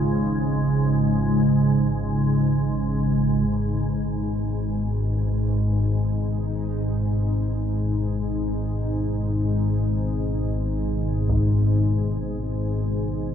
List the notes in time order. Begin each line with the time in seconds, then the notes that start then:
Already playing: G#1 G#2 C#3 G#3 C#4 F4 C#5
3.51 G#1 G#2 B2 G#3 G#4
4.83 D#4
6.13 G#3
11.29 taiko